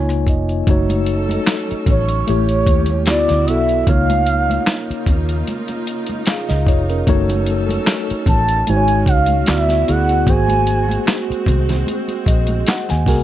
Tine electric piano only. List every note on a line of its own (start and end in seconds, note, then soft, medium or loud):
0.00 0.54 A#3 medium
0.00 0.54 D#4 medium
0.00 0.54 F4 medium
0.00 0.54 C#5 medium
0.00 0.26 G#5 medium
0.29 0.66 D#5 medium
0.69 1.98 A3 medium
0.69 1.98 D#4 medium
0.69 1.98 F#4 medium
0.69 1.99 C#5 medium
2.27 2.93 A3 medium
2.27 2.93 E4 medium
2.27 2.94 G4 medium
2.27 2.94 C#5 medium
3.08 3.40 B3 medium
3.08 3.41 E4 medium
3.08 3.41 F#4 medium
3.08 3.41 D5 medium
3.48 3.81 B3 medium
3.48 3.81 E4 medium
3.48 3.81 F#4 medium
3.48 3.81 A4 medium
3.88 5.17 A#3 medium
3.88 5.17 D#4 medium
3.88 5.18 F4 medium
3.88 5.18 C#5 medium
6.29 6.48 G#4 soft
6.29 6.48 F5 medium
6.49 6.67 D#5 medium
6.68 6.88 F4 medium
6.68 6.88 C#5 medium
6.90 7.27 C#4 medium
6.90 7.27 A#4 medium
7.07 8.37 A3 medium
7.07 8.38 D#4 medium
7.07 8.38 F#4 medium
7.07 8.38 C#5 loud
8.69 9.33 G#3 medium
8.69 9.34 D#4 medium
8.69 9.34 F#4 medium
8.69 8.76 C5 medium
8.77 9.37 C#5 medium
9.48 9.80 B3 medium
9.48 9.81 E4 medium
9.48 9.81 F#4 medium
9.48 9.81 D5 medium
9.87 10.20 B3 medium
9.87 10.21 E4 medium
9.87 10.21 F#4 medium
9.87 10.21 G#4 medium
10.28 11.57 A#3 medium
10.28 11.57 F#4 medium
10.28 11.58 G#4 medium
10.28 11.58 C5 medium
12.28 12.65 D#5 medium
12.68 12.88 F#5 medium
12.90 13.07 G#5 medium
13.07 13.23 A#3 medium
13.07 13.23 F#4 medium
13.07 13.23 G#4 medium
13.07 13.23 A#4 medium
13.07 13.23 G#5 medium